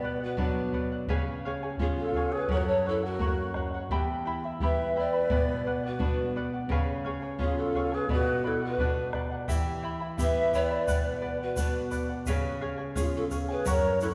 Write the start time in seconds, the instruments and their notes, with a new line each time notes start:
Already playing: nylon-string guitar B2, quena B4, pan flute D5
0.03 charango B4 D5 F#5
0.20 quena F#4, pan flute B4, charango D5 F#5
0.37 nylon-string guitar F#3 B3 D4, quena F#4, charango B4 D5 F#5, bombo low
0.41 pan flute B4
0.73 charango B4 D5 F#5, bombo low
0.92 charango D5 F#5
1.07 nylon-string guitar C#3, charango G#4 B4 C#5 F5 G#5, bombo low
1.45 charango G#4 C#5 F5 G#5
1.63 charango G#4 C#5 G#5
1.77 nylon-string guitar B3 C#4 F4, quena F4, charango G#4 C#5 F5, bombo low
1.82 pan flute G#4, charango G#5
1.96 quena F4, pan flute A4
2.12 charango G#4 F5, bombo low
2.17 charango C#5 G#5
2.32 quena G#4, charango G#4 C#5 G#5, pan flute B4
2.48 nylon-string guitar F#2, charango A#4 C#5 F#5, quena A#4, bombo low
2.52 pan flute C#5
2.57 quena F#4, pan flute A#4
2.66 quena A4, pan flute C#5
2.85 quena E4, pan flute A4, charango A#4 C#5 F#5
3.03 quena F#4, pan flute A#4, charango C#5 F#5
3.19 nylon-string guitar A#3 C#4 F#4, charango A#4 C#5 F#5, bombo low
3.54 charango A#4 C#5 F#5, bombo rim, bombo low
3.74 charango C#5 F#5
3.90 nylon-string guitar E2, charango E4 G4 E5 G5 B5, bombo low
4.25 charango E4 E5 G5 B5
4.44 charango E4 E5 B5
4.60 nylon-string guitar B3 E4 G4, charango E4 E5 G5 B5, quena B4, pan flute E5, bombo low
4.96 charango E4 E5 G5 B5, quena B4, pan flute D5
5.13 charango E4 E5 B5
5.29 nylon-string guitar B2, charango B4 D5 F#5, bombo low
5.66 charango B4 D5 F#5
5.83 pan flute B4, charango D5 F#5
5.88 quena F#4
5.99 nylon-string guitar B3 D4 F#4, charango B4 D5 F#5, bombo low
6.03 quena F#4, pan flute B4
6.36 charango B4 D5 F#5
6.53 charango D5 F#5
6.69 nylon-string guitar C#3, charango G#4 B4 C#5 F5 G#5, bombo low
7.04 charango G#4 C#5 F5 G#5
7.22 charango G#4 C#5 G#5
7.39 nylon-string guitar B3 C#4 F4, quena F4, pan flute G#4, charango G#4 C#5 F5 G#5, bombo low
7.57 quena F#4, pan flute A4
7.62 quena F4
7.74 charango G#4 C#5 F5 G#5, bombo low
7.91 charango G#4 C#5 G#5, quena G#4, pan flute B4
8.08 nylon-string guitar B2, charango B4 D5 F#5, pan flute B4, bombo low
8.12 quena F#4
8.44 quena E4, pan flute A4, charango B4 D5 F#5
8.62 quena F#4, pan flute B4, charango D5 F#5
8.78 nylon-string guitar B3 D4 F#4, charango B4 D5 F#5, bombo low
9.13 charango B4 D5 F#5, bombo rim, bombo low
9.31 charango D5 F#5
9.48 nylon-string guitar E3, charango E4 G4 E5 G5 B5, bombo low, shaker
9.83 charango E4 E5 G5 B5
10.00 charango E4 E5 B5
10.18 nylon-string guitar B3 E4 G4, charango E4 E5 G5 B5, quena B4, bombo low, shaker
10.22 pan flute E5
10.53 charango E4 E5 G5 B5, quena B4, pan flute D5, bombo low, shaker
10.70 charango E4 E5 B5
10.87 nylon-string guitar B2, charango B4 D5 F#5, bombo low, shaker
11.21 charango B4 D5 F#5
11.40 quena F#4, pan flute B4, charango D5 F#5
11.56 nylon-string guitar B3 D4 F#4, charango B4 D5 F#5, pan flute B4, bombo low, shaker
11.60 quena F#4
11.91 charango B4 D5 F#5, bombo low, shaker
12.09 charango D5 F#5
12.26 nylon-string guitar C#3, charango G#4 B4 C#5 F5 G#5, bombo low, shaker
12.61 charango G#4 C#5 F5 G#5
12.78 charango G#4 C#5 G#5
12.95 nylon-string guitar B3 C#4 F4, charango G#4 C#5 F5 G#5, pan flute G#4, bombo low, shaker
12.99 quena F4
13.16 quena F4, pan flute A4
13.31 charango G#4 C#5 F5 G#5, bombo low, shaker
13.48 charango G#4 C#5 G#5, quena G#4, pan flute B4
13.65 nylon-string guitar F#2, charango A#4 C#5 F#5, pan flute C#5, bombo low, shaker
13.70 quena A#4
14.01 quena E4, pan flute A4, charango A#4 C#5 F#5, shaker